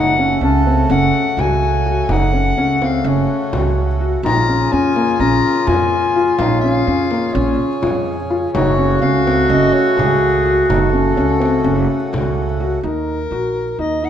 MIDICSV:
0, 0, Header, 1, 7, 480
1, 0, Start_track
1, 0, Tempo, 477707
1, 2103, Time_signature, 9, 3, 24, 8
1, 14164, End_track
2, 0, Start_track
2, 0, Title_t, "Soprano saxophone"
2, 0, Program_c, 0, 64
2, 0, Note_on_c, 0, 78, 97
2, 396, Note_off_c, 0, 78, 0
2, 442, Note_on_c, 0, 81, 83
2, 880, Note_off_c, 0, 81, 0
2, 912, Note_on_c, 0, 78, 96
2, 1412, Note_on_c, 0, 80, 92
2, 1427, Note_off_c, 0, 78, 0
2, 2130, Note_on_c, 0, 78, 101
2, 2145, Note_off_c, 0, 80, 0
2, 2850, Note_on_c, 0, 77, 79
2, 2865, Note_off_c, 0, 78, 0
2, 3092, Note_on_c, 0, 73, 71
2, 3107, Note_off_c, 0, 77, 0
2, 4039, Note_off_c, 0, 73, 0
2, 4267, Note_on_c, 0, 82, 98
2, 4745, Note_on_c, 0, 80, 90
2, 4760, Note_off_c, 0, 82, 0
2, 5218, Note_off_c, 0, 80, 0
2, 5224, Note_on_c, 0, 82, 96
2, 5702, Note_on_c, 0, 80, 95
2, 5717, Note_off_c, 0, 82, 0
2, 6404, Note_off_c, 0, 80, 0
2, 6410, Note_on_c, 0, 77, 81
2, 6634, Note_off_c, 0, 77, 0
2, 6640, Note_on_c, 0, 77, 87
2, 7373, Note_on_c, 0, 73, 77
2, 7388, Note_off_c, 0, 77, 0
2, 8340, Note_off_c, 0, 73, 0
2, 8570, Note_on_c, 0, 73, 97
2, 9024, Note_off_c, 0, 73, 0
2, 9053, Note_on_c, 0, 77, 84
2, 9544, Note_on_c, 0, 75, 94
2, 9559, Note_off_c, 0, 77, 0
2, 9777, Note_on_c, 0, 73, 88
2, 9792, Note_off_c, 0, 75, 0
2, 10025, Note_on_c, 0, 68, 80
2, 10040, Note_off_c, 0, 73, 0
2, 10745, Note_off_c, 0, 68, 0
2, 10752, Note_on_c, 0, 69, 84
2, 12386, Note_off_c, 0, 69, 0
2, 12921, Note_on_c, 0, 70, 81
2, 13830, Note_off_c, 0, 70, 0
2, 13866, Note_on_c, 0, 75, 85
2, 14114, Note_on_c, 0, 78, 81
2, 14129, Note_off_c, 0, 75, 0
2, 14164, Note_off_c, 0, 78, 0
2, 14164, End_track
3, 0, Start_track
3, 0, Title_t, "Clarinet"
3, 0, Program_c, 1, 71
3, 4258, Note_on_c, 1, 65, 101
3, 8271, Note_off_c, 1, 65, 0
3, 8586, Note_on_c, 1, 66, 107
3, 12621, Note_off_c, 1, 66, 0
3, 14164, End_track
4, 0, Start_track
4, 0, Title_t, "Felt piano"
4, 0, Program_c, 2, 0
4, 0, Note_on_c, 2, 63, 84
4, 107, Note_off_c, 2, 63, 0
4, 190, Note_on_c, 2, 61, 65
4, 349, Note_off_c, 2, 61, 0
4, 429, Note_on_c, 2, 61, 81
4, 588, Note_off_c, 2, 61, 0
4, 672, Note_on_c, 2, 60, 74
4, 830, Note_off_c, 2, 60, 0
4, 908, Note_on_c, 2, 61, 74
4, 1229, Note_off_c, 2, 61, 0
4, 1381, Note_on_c, 2, 66, 69
4, 1704, Note_off_c, 2, 66, 0
4, 1868, Note_on_c, 2, 66, 65
4, 2028, Note_off_c, 2, 66, 0
4, 2105, Note_on_c, 2, 63, 74
4, 2266, Note_off_c, 2, 63, 0
4, 2345, Note_on_c, 2, 61, 59
4, 2506, Note_off_c, 2, 61, 0
4, 2590, Note_on_c, 2, 61, 71
4, 2749, Note_off_c, 2, 61, 0
4, 2831, Note_on_c, 2, 60, 66
4, 2990, Note_off_c, 2, 60, 0
4, 3066, Note_on_c, 2, 61, 68
4, 3388, Note_off_c, 2, 61, 0
4, 3545, Note_on_c, 2, 66, 71
4, 3868, Note_off_c, 2, 66, 0
4, 4025, Note_on_c, 2, 66, 63
4, 4186, Note_off_c, 2, 66, 0
4, 4263, Note_on_c, 2, 63, 69
4, 4425, Note_off_c, 2, 63, 0
4, 4507, Note_on_c, 2, 61, 59
4, 4668, Note_off_c, 2, 61, 0
4, 4743, Note_on_c, 2, 61, 73
4, 4905, Note_off_c, 2, 61, 0
4, 4982, Note_on_c, 2, 58, 69
4, 5145, Note_off_c, 2, 58, 0
4, 5229, Note_on_c, 2, 61, 76
4, 5551, Note_off_c, 2, 61, 0
4, 5708, Note_on_c, 2, 65, 72
4, 6030, Note_off_c, 2, 65, 0
4, 6190, Note_on_c, 2, 65, 66
4, 6350, Note_off_c, 2, 65, 0
4, 6431, Note_on_c, 2, 63, 81
4, 6591, Note_off_c, 2, 63, 0
4, 6669, Note_on_c, 2, 61, 66
4, 6830, Note_off_c, 2, 61, 0
4, 6904, Note_on_c, 2, 61, 74
4, 7066, Note_off_c, 2, 61, 0
4, 7145, Note_on_c, 2, 58, 67
4, 7307, Note_off_c, 2, 58, 0
4, 7381, Note_on_c, 2, 61, 74
4, 7706, Note_off_c, 2, 61, 0
4, 7861, Note_on_c, 2, 65, 71
4, 8186, Note_off_c, 2, 65, 0
4, 8344, Note_on_c, 2, 65, 75
4, 8506, Note_off_c, 2, 65, 0
4, 8584, Note_on_c, 2, 63, 79
4, 8746, Note_off_c, 2, 63, 0
4, 8823, Note_on_c, 2, 61, 63
4, 8986, Note_off_c, 2, 61, 0
4, 9068, Note_on_c, 2, 61, 79
4, 9229, Note_off_c, 2, 61, 0
4, 9310, Note_on_c, 2, 60, 67
4, 9470, Note_off_c, 2, 60, 0
4, 9544, Note_on_c, 2, 61, 76
4, 9867, Note_off_c, 2, 61, 0
4, 10022, Note_on_c, 2, 66, 78
4, 10345, Note_off_c, 2, 66, 0
4, 10505, Note_on_c, 2, 66, 75
4, 10666, Note_off_c, 2, 66, 0
4, 10744, Note_on_c, 2, 63, 73
4, 10905, Note_off_c, 2, 63, 0
4, 10981, Note_on_c, 2, 61, 61
4, 11143, Note_off_c, 2, 61, 0
4, 11226, Note_on_c, 2, 61, 76
4, 11386, Note_off_c, 2, 61, 0
4, 11455, Note_on_c, 2, 60, 76
4, 11619, Note_off_c, 2, 60, 0
4, 11702, Note_on_c, 2, 61, 73
4, 12024, Note_off_c, 2, 61, 0
4, 12186, Note_on_c, 2, 66, 68
4, 12507, Note_off_c, 2, 66, 0
4, 12663, Note_on_c, 2, 66, 73
4, 12824, Note_off_c, 2, 66, 0
4, 12900, Note_on_c, 2, 63, 72
4, 13222, Note_off_c, 2, 63, 0
4, 13382, Note_on_c, 2, 66, 70
4, 13703, Note_off_c, 2, 66, 0
4, 13856, Note_on_c, 2, 63, 66
4, 14018, Note_off_c, 2, 63, 0
4, 14089, Note_on_c, 2, 63, 60
4, 14164, Note_off_c, 2, 63, 0
4, 14164, End_track
5, 0, Start_track
5, 0, Title_t, "Harmonium"
5, 0, Program_c, 3, 20
5, 0, Note_on_c, 3, 49, 73
5, 0, Note_on_c, 3, 57, 67
5, 0, Note_on_c, 3, 66, 78
5, 4233, Note_off_c, 3, 66, 0
5, 4234, Note_off_c, 3, 57, 0
5, 4237, Note_off_c, 3, 49, 0
5, 4270, Note_on_c, 3, 58, 62
5, 4270, Note_on_c, 3, 68, 76
5, 4272, Note_on_c, 3, 49, 69
5, 6408, Note_off_c, 3, 58, 0
5, 6434, Note_on_c, 3, 61, 67
5, 8550, Note_off_c, 3, 68, 0
5, 8569, Note_off_c, 3, 61, 0
5, 8575, Note_on_c, 3, 57, 63
5, 8578, Note_on_c, 3, 66, 78
5, 12856, Note_off_c, 3, 57, 0
5, 12857, Note_off_c, 3, 66, 0
5, 12865, Note_off_c, 3, 49, 0
5, 14164, End_track
6, 0, Start_track
6, 0, Title_t, "Upright bass"
6, 0, Program_c, 4, 32
6, 0, Note_on_c, 4, 30, 93
6, 359, Note_off_c, 4, 30, 0
6, 413, Note_on_c, 4, 37, 81
6, 836, Note_off_c, 4, 37, 0
6, 900, Note_on_c, 4, 30, 100
6, 1111, Note_off_c, 4, 30, 0
6, 1377, Note_on_c, 4, 37, 80
6, 2008, Note_off_c, 4, 37, 0
6, 2099, Note_on_c, 4, 30, 90
6, 2520, Note_off_c, 4, 30, 0
6, 2584, Note_on_c, 4, 37, 74
6, 3003, Note_off_c, 4, 37, 0
6, 3059, Note_on_c, 4, 30, 96
6, 3271, Note_off_c, 4, 30, 0
6, 3545, Note_on_c, 4, 37, 78
6, 4173, Note_off_c, 4, 37, 0
6, 4253, Note_on_c, 4, 34, 98
6, 4678, Note_off_c, 4, 34, 0
6, 4749, Note_on_c, 4, 41, 83
6, 5167, Note_off_c, 4, 41, 0
6, 5219, Note_on_c, 4, 34, 88
6, 5432, Note_off_c, 4, 34, 0
6, 5701, Note_on_c, 4, 41, 86
6, 6332, Note_off_c, 4, 41, 0
6, 6422, Note_on_c, 4, 34, 95
6, 6843, Note_off_c, 4, 34, 0
6, 6903, Note_on_c, 4, 41, 82
6, 7324, Note_off_c, 4, 41, 0
6, 7384, Note_on_c, 4, 34, 104
6, 7595, Note_off_c, 4, 34, 0
6, 7868, Note_on_c, 4, 41, 76
6, 8496, Note_off_c, 4, 41, 0
6, 8588, Note_on_c, 4, 30, 97
6, 9006, Note_off_c, 4, 30, 0
6, 9061, Note_on_c, 4, 37, 83
6, 9482, Note_off_c, 4, 37, 0
6, 9541, Note_on_c, 4, 30, 95
6, 9753, Note_off_c, 4, 30, 0
6, 10020, Note_on_c, 4, 37, 82
6, 10650, Note_off_c, 4, 37, 0
6, 10748, Note_on_c, 4, 30, 96
6, 11165, Note_off_c, 4, 30, 0
6, 11225, Note_on_c, 4, 37, 81
6, 11643, Note_off_c, 4, 37, 0
6, 11699, Note_on_c, 4, 30, 100
6, 11910, Note_off_c, 4, 30, 0
6, 12186, Note_on_c, 4, 37, 79
6, 12812, Note_off_c, 4, 37, 0
6, 12895, Note_on_c, 4, 39, 84
6, 13316, Note_off_c, 4, 39, 0
6, 13372, Note_on_c, 4, 34, 73
6, 13794, Note_off_c, 4, 34, 0
6, 13852, Note_on_c, 4, 39, 75
6, 14164, Note_off_c, 4, 39, 0
6, 14164, End_track
7, 0, Start_track
7, 0, Title_t, "Frame drum"
7, 193, Note_on_c, 9, 64, 17
7, 294, Note_off_c, 9, 64, 0
7, 1394, Note_on_c, 9, 64, 52
7, 1495, Note_off_c, 9, 64, 0
7, 1871, Note_on_c, 9, 64, 20
7, 1972, Note_off_c, 9, 64, 0
7, 2101, Note_on_c, 9, 64, 54
7, 2201, Note_off_c, 9, 64, 0
7, 2359, Note_on_c, 9, 64, 17
7, 2460, Note_off_c, 9, 64, 0
7, 2832, Note_on_c, 9, 64, 43
7, 2933, Note_off_c, 9, 64, 0
7, 3547, Note_on_c, 9, 64, 55
7, 3648, Note_off_c, 9, 64, 0
7, 4281, Note_on_c, 9, 64, 54
7, 4381, Note_off_c, 9, 64, 0
7, 4509, Note_on_c, 9, 64, 20
7, 4610, Note_off_c, 9, 64, 0
7, 4754, Note_on_c, 9, 64, 16
7, 4855, Note_off_c, 9, 64, 0
7, 4985, Note_on_c, 9, 64, 45
7, 5086, Note_off_c, 9, 64, 0
7, 5698, Note_on_c, 9, 64, 59
7, 5798, Note_off_c, 9, 64, 0
7, 6181, Note_on_c, 9, 64, 21
7, 6282, Note_off_c, 9, 64, 0
7, 6416, Note_on_c, 9, 64, 57
7, 6517, Note_off_c, 9, 64, 0
7, 6653, Note_on_c, 9, 64, 17
7, 6754, Note_off_c, 9, 64, 0
7, 6903, Note_on_c, 9, 64, 17
7, 7003, Note_off_c, 9, 64, 0
7, 7141, Note_on_c, 9, 64, 46
7, 7241, Note_off_c, 9, 64, 0
7, 7864, Note_on_c, 9, 64, 55
7, 7964, Note_off_c, 9, 64, 0
7, 8357, Note_on_c, 9, 64, 18
7, 8457, Note_off_c, 9, 64, 0
7, 8588, Note_on_c, 9, 64, 55
7, 8688, Note_off_c, 9, 64, 0
7, 8839, Note_on_c, 9, 64, 18
7, 8939, Note_off_c, 9, 64, 0
7, 9075, Note_on_c, 9, 64, 17
7, 9176, Note_off_c, 9, 64, 0
7, 9318, Note_on_c, 9, 64, 49
7, 9419, Note_off_c, 9, 64, 0
7, 10040, Note_on_c, 9, 64, 58
7, 10141, Note_off_c, 9, 64, 0
7, 10520, Note_on_c, 9, 64, 20
7, 10621, Note_off_c, 9, 64, 0
7, 10751, Note_on_c, 9, 64, 56
7, 10852, Note_off_c, 9, 64, 0
7, 10992, Note_on_c, 9, 64, 17
7, 11093, Note_off_c, 9, 64, 0
7, 11470, Note_on_c, 9, 64, 44
7, 11570, Note_off_c, 9, 64, 0
7, 11708, Note_on_c, 9, 64, 18
7, 11809, Note_off_c, 9, 64, 0
7, 11958, Note_on_c, 9, 64, 19
7, 12059, Note_off_c, 9, 64, 0
7, 12196, Note_on_c, 9, 64, 53
7, 12296, Note_off_c, 9, 64, 0
7, 12423, Note_on_c, 9, 64, 16
7, 12523, Note_off_c, 9, 64, 0
7, 14164, End_track
0, 0, End_of_file